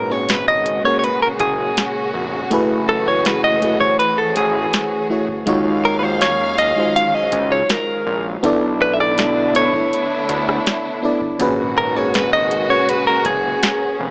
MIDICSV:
0, 0, Header, 1, 6, 480
1, 0, Start_track
1, 0, Tempo, 740741
1, 1626, Time_signature, 4, 2, 24, 8
1, 9141, End_track
2, 0, Start_track
2, 0, Title_t, "Clean electric guitar"
2, 0, Program_c, 0, 27
2, 0, Note_on_c, 0, 70, 98
2, 75, Note_off_c, 0, 70, 0
2, 75, Note_on_c, 0, 73, 98
2, 197, Note_off_c, 0, 73, 0
2, 197, Note_on_c, 0, 71, 95
2, 310, Note_off_c, 0, 71, 0
2, 312, Note_on_c, 0, 75, 98
2, 550, Note_off_c, 0, 75, 0
2, 552, Note_on_c, 0, 73, 94
2, 634, Note_off_c, 0, 73, 0
2, 642, Note_on_c, 0, 73, 76
2, 674, Note_off_c, 0, 73, 0
2, 674, Note_on_c, 0, 71, 97
2, 790, Note_off_c, 0, 71, 0
2, 793, Note_on_c, 0, 70, 91
2, 825, Note_off_c, 0, 70, 0
2, 910, Note_on_c, 0, 68, 84
2, 1362, Note_off_c, 0, 68, 0
2, 1871, Note_on_c, 0, 69, 95
2, 1992, Note_off_c, 0, 69, 0
2, 1995, Note_on_c, 0, 73, 101
2, 2113, Note_off_c, 0, 73, 0
2, 2113, Note_on_c, 0, 71, 100
2, 2226, Note_off_c, 0, 71, 0
2, 2229, Note_on_c, 0, 75, 96
2, 2463, Note_off_c, 0, 75, 0
2, 2465, Note_on_c, 0, 73, 98
2, 2584, Note_off_c, 0, 73, 0
2, 2587, Note_on_c, 0, 71, 99
2, 2709, Note_on_c, 0, 69, 88
2, 2710, Note_off_c, 0, 71, 0
2, 2819, Note_off_c, 0, 69, 0
2, 2831, Note_on_c, 0, 68, 82
2, 3283, Note_off_c, 0, 68, 0
2, 3791, Note_on_c, 0, 70, 84
2, 3880, Note_off_c, 0, 70, 0
2, 3882, Note_on_c, 0, 71, 63
2, 3908, Note_off_c, 0, 71, 0
2, 3908, Note_on_c, 0, 72, 92
2, 4026, Note_off_c, 0, 72, 0
2, 4028, Note_on_c, 0, 73, 94
2, 4265, Note_off_c, 0, 73, 0
2, 4267, Note_on_c, 0, 75, 102
2, 4508, Note_off_c, 0, 75, 0
2, 4511, Note_on_c, 0, 77, 115
2, 4630, Note_off_c, 0, 77, 0
2, 4630, Note_on_c, 0, 75, 108
2, 4871, Note_on_c, 0, 73, 94
2, 4875, Note_off_c, 0, 75, 0
2, 4996, Note_off_c, 0, 73, 0
2, 4996, Note_on_c, 0, 70, 83
2, 5351, Note_off_c, 0, 70, 0
2, 5713, Note_on_c, 0, 71, 99
2, 5786, Note_off_c, 0, 71, 0
2, 5790, Note_on_c, 0, 76, 82
2, 5831, Note_off_c, 0, 76, 0
2, 5835, Note_on_c, 0, 74, 107
2, 6193, Note_off_c, 0, 74, 0
2, 6196, Note_on_c, 0, 73, 101
2, 7125, Note_off_c, 0, 73, 0
2, 7631, Note_on_c, 0, 70, 95
2, 7752, Note_off_c, 0, 70, 0
2, 7752, Note_on_c, 0, 73, 101
2, 7867, Note_off_c, 0, 73, 0
2, 7867, Note_on_c, 0, 71, 102
2, 7988, Note_off_c, 0, 71, 0
2, 7991, Note_on_c, 0, 75, 96
2, 8228, Note_off_c, 0, 75, 0
2, 8231, Note_on_c, 0, 73, 95
2, 8354, Note_off_c, 0, 73, 0
2, 8354, Note_on_c, 0, 71, 99
2, 8468, Note_off_c, 0, 71, 0
2, 8470, Note_on_c, 0, 70, 90
2, 8591, Note_on_c, 0, 68, 84
2, 8592, Note_off_c, 0, 70, 0
2, 9043, Note_off_c, 0, 68, 0
2, 9141, End_track
3, 0, Start_track
3, 0, Title_t, "FM electric piano"
3, 0, Program_c, 1, 5
3, 0, Control_c, 1, 64, 127
3, 0, Note_on_c, 1, 46, 117
3, 0, Note_on_c, 1, 61, 109
3, 0, Note_on_c, 1, 66, 103
3, 0, Note_on_c, 1, 68, 106
3, 0, Note_on_c, 1, 71, 127
3, 63, Note_on_c, 1, 58, 77
3, 68, Note_off_c, 1, 61, 0
3, 68, Note_on_c, 1, 61, 70
3, 72, Note_off_c, 1, 66, 0
3, 72, Note_on_c, 1, 66, 69
3, 77, Note_off_c, 1, 68, 0
3, 77, Note_on_c, 1, 68, 68
3, 82, Note_off_c, 1, 71, 0
3, 82, Note_on_c, 1, 71, 66
3, 116, Note_off_c, 1, 71, 0
3, 123, Note_on_c, 1, 73, 83
3, 451, Note_off_c, 1, 58, 0
3, 453, Note_off_c, 1, 61, 0
3, 456, Note_off_c, 1, 66, 0
3, 458, Note_off_c, 1, 68, 0
3, 481, Note_off_c, 1, 73, 0
3, 545, Note_on_c, 1, 58, 78
3, 550, Note_on_c, 1, 61, 73
3, 555, Note_on_c, 1, 66, 72
3, 559, Note_on_c, 1, 68, 73
3, 563, Note_on_c, 1, 70, 85
3, 1318, Note_off_c, 1, 58, 0
3, 1321, Note_off_c, 1, 61, 0
3, 1323, Note_off_c, 1, 66, 0
3, 1325, Note_off_c, 1, 68, 0
3, 1327, Note_off_c, 1, 70, 0
3, 1623, Note_on_c, 1, 57, 116
3, 1627, Note_on_c, 1, 64, 105
3, 1632, Note_on_c, 1, 66, 101
3, 1636, Control_c, 1, 64, 0
3, 1638, Note_on_c, 1, 68, 108
3, 1640, Note_off_c, 1, 46, 0
3, 1643, Note_on_c, 1, 71, 126
3, 1753, Control_c, 1, 64, 127
3, 2204, Note_off_c, 1, 57, 0
3, 2206, Note_off_c, 1, 64, 0
3, 2209, Note_off_c, 1, 66, 0
3, 2212, Note_off_c, 1, 68, 0
3, 2214, Note_off_c, 1, 71, 0
3, 2343, Note_on_c, 1, 57, 81
3, 2347, Note_on_c, 1, 64, 69
3, 2353, Note_on_c, 1, 66, 69
3, 2359, Note_on_c, 1, 68, 70
3, 2362, Note_on_c, 1, 71, 81
3, 2441, Note_off_c, 1, 57, 0
3, 2443, Note_off_c, 1, 64, 0
3, 2446, Note_off_c, 1, 66, 0
3, 2449, Note_off_c, 1, 68, 0
3, 2451, Note_off_c, 1, 71, 0
3, 2464, Note_on_c, 1, 57, 73
3, 2469, Note_on_c, 1, 64, 63
3, 2473, Note_on_c, 1, 66, 65
3, 2479, Note_on_c, 1, 68, 64
3, 2484, Note_on_c, 1, 72, 66
3, 2517, Note_off_c, 1, 72, 0
3, 2525, Note_on_c, 1, 73, 80
3, 3141, Note_off_c, 1, 57, 0
3, 3144, Note_off_c, 1, 64, 0
3, 3146, Note_off_c, 1, 66, 0
3, 3149, Note_off_c, 1, 68, 0
3, 3172, Note_off_c, 1, 73, 0
3, 3301, Note_on_c, 1, 57, 76
3, 3305, Note_on_c, 1, 64, 70
3, 3309, Note_on_c, 1, 66, 68
3, 3315, Note_on_c, 1, 68, 71
3, 3320, Note_on_c, 1, 73, 82
3, 3497, Note_off_c, 1, 57, 0
3, 3499, Note_off_c, 1, 64, 0
3, 3501, Note_off_c, 1, 66, 0
3, 3504, Note_off_c, 1, 68, 0
3, 3506, Note_off_c, 1, 73, 0
3, 3537, Note_on_c, 1, 56, 110
3, 3544, Note_on_c, 1, 63, 114
3, 3548, Note_on_c, 1, 65, 112
3, 3551, Note_on_c, 1, 66, 114
3, 3555, Control_c, 1, 64, 0
3, 3556, Note_on_c, 1, 73, 127
3, 3666, Control_c, 1, 64, 127
3, 3831, Note_off_c, 1, 56, 0
3, 3835, Note_off_c, 1, 63, 0
3, 3837, Note_off_c, 1, 65, 0
3, 3838, Note_off_c, 1, 66, 0
3, 3841, Note_off_c, 1, 73, 0
3, 3901, Note_on_c, 1, 56, 75
3, 3906, Note_on_c, 1, 63, 72
3, 3911, Note_on_c, 1, 65, 72
3, 3915, Note_on_c, 1, 66, 75
3, 3920, Note_on_c, 1, 73, 82
3, 4290, Note_off_c, 1, 56, 0
3, 4292, Note_off_c, 1, 63, 0
3, 4295, Note_off_c, 1, 65, 0
3, 4297, Note_off_c, 1, 66, 0
3, 4300, Note_off_c, 1, 73, 0
3, 4382, Note_on_c, 1, 56, 75
3, 4387, Note_on_c, 1, 63, 72
3, 4391, Note_on_c, 1, 65, 74
3, 4397, Note_on_c, 1, 66, 70
3, 4402, Note_on_c, 1, 72, 92
3, 5157, Note_off_c, 1, 56, 0
3, 5159, Note_off_c, 1, 63, 0
3, 5162, Note_off_c, 1, 65, 0
3, 5164, Note_off_c, 1, 66, 0
3, 5167, Note_off_c, 1, 72, 0
3, 5462, Note_on_c, 1, 59, 121
3, 5467, Note_on_c, 1, 62, 108
3, 5472, Note_on_c, 1, 64, 107
3, 5474, Control_c, 1, 64, 0
3, 5476, Note_on_c, 1, 69, 113
3, 5482, Note_on_c, 1, 74, 127
3, 5579, Control_c, 1, 64, 127
3, 6044, Note_off_c, 1, 59, 0
3, 6046, Note_off_c, 1, 62, 0
3, 6049, Note_off_c, 1, 64, 0
3, 6051, Note_off_c, 1, 69, 0
3, 6054, Note_off_c, 1, 74, 0
3, 6182, Note_on_c, 1, 59, 82
3, 6188, Note_on_c, 1, 62, 74
3, 6192, Note_on_c, 1, 64, 69
3, 6195, Note_on_c, 1, 69, 73
3, 6201, Note_on_c, 1, 74, 87
3, 6281, Note_off_c, 1, 59, 0
3, 6284, Note_off_c, 1, 62, 0
3, 6286, Note_off_c, 1, 64, 0
3, 6287, Note_off_c, 1, 69, 0
3, 6290, Note_off_c, 1, 74, 0
3, 6303, Note_on_c, 1, 59, 69
3, 6307, Note_on_c, 1, 62, 66
3, 6311, Note_on_c, 1, 64, 68
3, 6317, Note_on_c, 1, 69, 64
3, 6322, Note_on_c, 1, 73, 74
3, 6981, Note_off_c, 1, 59, 0
3, 6983, Note_off_c, 1, 62, 0
3, 6985, Note_off_c, 1, 64, 0
3, 6988, Note_off_c, 1, 69, 0
3, 6990, Note_off_c, 1, 73, 0
3, 7144, Note_on_c, 1, 59, 89
3, 7149, Note_on_c, 1, 62, 86
3, 7152, Note_on_c, 1, 64, 84
3, 7158, Note_on_c, 1, 69, 83
3, 7162, Note_on_c, 1, 74, 101
3, 7338, Note_off_c, 1, 59, 0
3, 7341, Note_off_c, 1, 62, 0
3, 7343, Note_off_c, 1, 64, 0
3, 7345, Note_off_c, 1, 69, 0
3, 7347, Note_off_c, 1, 74, 0
3, 7381, Note_on_c, 1, 46, 117
3, 7386, Note_on_c, 1, 61, 110
3, 7390, Note_on_c, 1, 66, 105
3, 7394, Control_c, 1, 64, 0
3, 7395, Note_on_c, 1, 68, 107
3, 7401, Note_on_c, 1, 71, 127
3, 7525, Control_c, 1, 64, 127
3, 7674, Note_off_c, 1, 46, 0
3, 7676, Note_off_c, 1, 61, 0
3, 7678, Note_off_c, 1, 66, 0
3, 7680, Note_off_c, 1, 68, 0
3, 7683, Note_off_c, 1, 71, 0
3, 7741, Note_on_c, 1, 58, 77
3, 7747, Note_on_c, 1, 61, 73
3, 7752, Note_on_c, 1, 66, 70
3, 7756, Note_on_c, 1, 68, 74
3, 7761, Note_on_c, 1, 70, 88
3, 8130, Note_off_c, 1, 58, 0
3, 8133, Note_off_c, 1, 61, 0
3, 8135, Note_off_c, 1, 66, 0
3, 8137, Note_off_c, 1, 68, 0
3, 8140, Note_off_c, 1, 70, 0
3, 8222, Note_on_c, 1, 46, 76
3, 8227, Note_on_c, 1, 61, 75
3, 8232, Note_on_c, 1, 66, 71
3, 8236, Note_on_c, 1, 68, 74
3, 8242, Note_on_c, 1, 71, 86
3, 8997, Note_off_c, 1, 46, 0
3, 8999, Note_off_c, 1, 61, 0
3, 9002, Note_off_c, 1, 66, 0
3, 9004, Note_off_c, 1, 68, 0
3, 9007, Note_off_c, 1, 71, 0
3, 9141, End_track
4, 0, Start_track
4, 0, Title_t, "String section"
4, 0, Program_c, 2, 48
4, 0, Note_on_c, 2, 49, 88
4, 0, Note_on_c, 2, 56, 78
4, 0, Note_on_c, 2, 61, 81
4, 0, Note_on_c, 2, 66, 91
4, 0, Note_on_c, 2, 68, 82
4, 1606, Note_off_c, 2, 49, 0
4, 1607, Note_off_c, 2, 56, 0
4, 1627, Note_on_c, 2, 52, 92
4, 1628, Note_on_c, 2, 57, 80
4, 3520, Note_off_c, 2, 61, 0
4, 3520, Note_off_c, 2, 66, 0
4, 3527, Note_off_c, 2, 52, 0
4, 3528, Note_off_c, 2, 57, 0
4, 3543, Note_on_c, 2, 61, 77
4, 3543, Note_on_c, 2, 77, 99
4, 3544, Note_on_c, 2, 51, 85
4, 3544, Note_on_c, 2, 54, 78
4, 5440, Note_off_c, 2, 68, 0
4, 5445, Note_off_c, 2, 61, 0
4, 5446, Note_off_c, 2, 51, 0
4, 5446, Note_off_c, 2, 54, 0
4, 5446, Note_off_c, 2, 77, 0
4, 5464, Note_on_c, 2, 50, 84
4, 5464, Note_on_c, 2, 59, 77
4, 5464, Note_on_c, 2, 64, 93
4, 5465, Note_on_c, 2, 57, 85
4, 5465, Note_on_c, 2, 62, 78
4, 7366, Note_off_c, 2, 50, 0
4, 7366, Note_off_c, 2, 59, 0
4, 7366, Note_off_c, 2, 62, 0
4, 7366, Note_off_c, 2, 64, 0
4, 7367, Note_off_c, 2, 57, 0
4, 7388, Note_on_c, 2, 49, 82
4, 7388, Note_on_c, 2, 56, 77
4, 7388, Note_on_c, 2, 61, 80
4, 7388, Note_on_c, 2, 66, 98
4, 7388, Note_on_c, 2, 68, 80
4, 9141, Note_off_c, 2, 49, 0
4, 9141, Note_off_c, 2, 56, 0
4, 9141, Note_off_c, 2, 61, 0
4, 9141, Note_off_c, 2, 66, 0
4, 9141, Note_off_c, 2, 68, 0
4, 9141, End_track
5, 0, Start_track
5, 0, Title_t, "Analog synth bass"
5, 0, Program_c, 3, 38
5, 0, Note_on_c, 3, 32, 104
5, 521, Note_off_c, 3, 32, 0
5, 907, Note_on_c, 3, 30, 96
5, 1106, Note_off_c, 3, 30, 0
5, 1388, Note_on_c, 3, 29, 95
5, 1586, Note_off_c, 3, 29, 0
5, 1629, Note_on_c, 3, 30, 104
5, 2442, Note_off_c, 3, 30, 0
5, 2828, Note_on_c, 3, 33, 93
5, 3026, Note_off_c, 3, 33, 0
5, 3544, Note_on_c, 3, 39, 102
5, 4359, Note_off_c, 3, 39, 0
5, 4747, Note_on_c, 3, 37, 95
5, 4946, Note_off_c, 3, 37, 0
5, 5227, Note_on_c, 3, 34, 88
5, 5425, Note_off_c, 3, 34, 0
5, 5466, Note_on_c, 3, 35, 109
5, 6280, Note_off_c, 3, 35, 0
5, 6669, Note_on_c, 3, 38, 95
5, 6867, Note_off_c, 3, 38, 0
5, 7387, Note_on_c, 3, 32, 108
5, 8201, Note_off_c, 3, 32, 0
5, 8587, Note_on_c, 3, 30, 99
5, 8786, Note_off_c, 3, 30, 0
5, 9070, Note_on_c, 3, 29, 97
5, 9141, Note_off_c, 3, 29, 0
5, 9141, End_track
6, 0, Start_track
6, 0, Title_t, "Drums"
6, 186, Note_on_c, 9, 42, 74
6, 193, Note_on_c, 9, 38, 113
6, 250, Note_off_c, 9, 42, 0
6, 257, Note_off_c, 9, 38, 0
6, 426, Note_on_c, 9, 42, 66
6, 491, Note_off_c, 9, 42, 0
6, 671, Note_on_c, 9, 42, 62
6, 736, Note_off_c, 9, 42, 0
6, 904, Note_on_c, 9, 42, 69
6, 907, Note_on_c, 9, 36, 103
6, 969, Note_off_c, 9, 42, 0
6, 972, Note_off_c, 9, 36, 0
6, 1148, Note_on_c, 9, 42, 76
6, 1152, Note_on_c, 9, 38, 119
6, 1213, Note_off_c, 9, 42, 0
6, 1217, Note_off_c, 9, 38, 0
6, 1626, Note_on_c, 9, 42, 73
6, 1627, Note_on_c, 9, 36, 112
6, 1691, Note_off_c, 9, 42, 0
6, 1692, Note_off_c, 9, 36, 0
6, 2106, Note_on_c, 9, 42, 69
6, 2113, Note_on_c, 9, 38, 115
6, 2171, Note_off_c, 9, 42, 0
6, 2178, Note_off_c, 9, 38, 0
6, 2346, Note_on_c, 9, 42, 64
6, 2411, Note_off_c, 9, 42, 0
6, 2468, Note_on_c, 9, 36, 96
6, 2533, Note_off_c, 9, 36, 0
6, 2590, Note_on_c, 9, 42, 62
6, 2655, Note_off_c, 9, 42, 0
6, 2823, Note_on_c, 9, 42, 73
6, 2888, Note_off_c, 9, 42, 0
6, 3067, Note_on_c, 9, 42, 73
6, 3070, Note_on_c, 9, 38, 116
6, 3132, Note_off_c, 9, 42, 0
6, 3135, Note_off_c, 9, 38, 0
6, 3424, Note_on_c, 9, 36, 96
6, 3489, Note_off_c, 9, 36, 0
6, 3543, Note_on_c, 9, 42, 78
6, 3544, Note_on_c, 9, 36, 123
6, 3608, Note_off_c, 9, 42, 0
6, 3609, Note_off_c, 9, 36, 0
6, 4024, Note_on_c, 9, 42, 67
6, 4031, Note_on_c, 9, 38, 111
6, 4089, Note_off_c, 9, 42, 0
6, 4096, Note_off_c, 9, 38, 0
6, 4266, Note_on_c, 9, 42, 65
6, 4331, Note_off_c, 9, 42, 0
6, 4511, Note_on_c, 9, 42, 68
6, 4576, Note_off_c, 9, 42, 0
6, 4743, Note_on_c, 9, 42, 70
6, 4746, Note_on_c, 9, 36, 108
6, 4808, Note_off_c, 9, 42, 0
6, 4811, Note_off_c, 9, 36, 0
6, 4986, Note_on_c, 9, 42, 76
6, 4989, Note_on_c, 9, 38, 116
6, 5050, Note_off_c, 9, 42, 0
6, 5054, Note_off_c, 9, 38, 0
6, 5466, Note_on_c, 9, 36, 123
6, 5467, Note_on_c, 9, 42, 77
6, 5531, Note_off_c, 9, 36, 0
6, 5531, Note_off_c, 9, 42, 0
6, 5834, Note_on_c, 9, 37, 72
6, 5898, Note_off_c, 9, 37, 0
6, 5947, Note_on_c, 9, 42, 70
6, 5954, Note_on_c, 9, 38, 108
6, 6011, Note_off_c, 9, 42, 0
6, 6018, Note_off_c, 9, 38, 0
6, 6188, Note_on_c, 9, 42, 65
6, 6253, Note_off_c, 9, 42, 0
6, 6310, Note_on_c, 9, 36, 100
6, 6374, Note_off_c, 9, 36, 0
6, 6435, Note_on_c, 9, 42, 66
6, 6500, Note_off_c, 9, 42, 0
6, 6668, Note_on_c, 9, 42, 70
6, 6733, Note_off_c, 9, 42, 0
6, 6796, Note_on_c, 9, 37, 97
6, 6861, Note_off_c, 9, 37, 0
6, 6911, Note_on_c, 9, 42, 71
6, 6914, Note_on_c, 9, 38, 123
6, 6976, Note_off_c, 9, 42, 0
6, 6979, Note_off_c, 9, 38, 0
6, 7266, Note_on_c, 9, 36, 95
6, 7331, Note_off_c, 9, 36, 0
6, 7385, Note_on_c, 9, 42, 75
6, 7386, Note_on_c, 9, 36, 115
6, 7449, Note_off_c, 9, 42, 0
6, 7451, Note_off_c, 9, 36, 0
6, 7867, Note_on_c, 9, 42, 71
6, 7874, Note_on_c, 9, 38, 112
6, 7931, Note_off_c, 9, 42, 0
6, 7939, Note_off_c, 9, 38, 0
6, 8107, Note_on_c, 9, 42, 70
6, 8172, Note_off_c, 9, 42, 0
6, 8351, Note_on_c, 9, 42, 69
6, 8416, Note_off_c, 9, 42, 0
6, 8585, Note_on_c, 9, 42, 69
6, 8587, Note_on_c, 9, 36, 104
6, 8650, Note_off_c, 9, 42, 0
6, 8652, Note_off_c, 9, 36, 0
6, 8830, Note_on_c, 9, 42, 73
6, 8833, Note_on_c, 9, 38, 118
6, 8895, Note_off_c, 9, 42, 0
6, 8898, Note_off_c, 9, 38, 0
6, 9141, End_track
0, 0, End_of_file